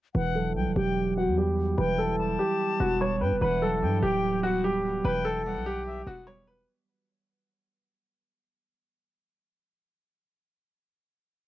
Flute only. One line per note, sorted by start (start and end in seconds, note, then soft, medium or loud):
0.15 0.53 F#5 medium
0.56 0.75 G5 medium
0.76 1.14 G5 medium
1.17 1.36 F#5 medium
1.78 2.16 G5 loud
2.19 3.17 A5 medium
3.21 3.40 G5 medium
3.41 3.80 F#5 medium
3.82 4.02 G5 medium
4.02 4.41 G5 medium
4.43 4.63 F#5 medium
5.05 5.43 G5 loud
5.46 5.84 F#5 medium
5.86 6.06 E5 medium
6.06 6.26 F#5 medium